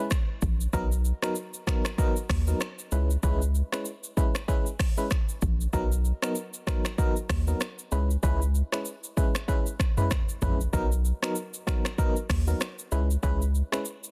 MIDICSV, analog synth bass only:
0, 0, Header, 1, 2, 480
1, 0, Start_track
1, 0, Key_signature, 5, "major"
1, 0, Tempo, 625000
1, 563, Time_signature, 4, 2, 24, 8
1, 10837, End_track
2, 0, Start_track
2, 0, Title_t, "Analog synth bass"
2, 0, Program_c, 0, 38
2, 325, Note_on_c, 0, 34, 94
2, 514, Note_off_c, 0, 34, 0
2, 563, Note_on_c, 0, 35, 110
2, 863, Note_off_c, 0, 35, 0
2, 1763, Note_on_c, 0, 39, 95
2, 1952, Note_off_c, 0, 39, 0
2, 2243, Note_on_c, 0, 37, 101
2, 2432, Note_off_c, 0, 37, 0
2, 2482, Note_on_c, 0, 37, 108
2, 2782, Note_off_c, 0, 37, 0
2, 4165, Note_on_c, 0, 34, 97
2, 4354, Note_off_c, 0, 34, 0
2, 4403, Note_on_c, 0, 35, 104
2, 4703, Note_off_c, 0, 35, 0
2, 5603, Note_on_c, 0, 39, 96
2, 5793, Note_off_c, 0, 39, 0
2, 6082, Note_on_c, 0, 37, 101
2, 6272, Note_off_c, 0, 37, 0
2, 6323, Note_on_c, 0, 37, 115
2, 6623, Note_off_c, 0, 37, 0
2, 8005, Note_on_c, 0, 34, 90
2, 8194, Note_off_c, 0, 34, 0
2, 8243, Note_on_c, 0, 35, 110
2, 8543, Note_off_c, 0, 35, 0
2, 9443, Note_on_c, 0, 39, 95
2, 9633, Note_off_c, 0, 39, 0
2, 9923, Note_on_c, 0, 37, 104
2, 10112, Note_off_c, 0, 37, 0
2, 10162, Note_on_c, 0, 37, 110
2, 10462, Note_off_c, 0, 37, 0
2, 10837, End_track
0, 0, End_of_file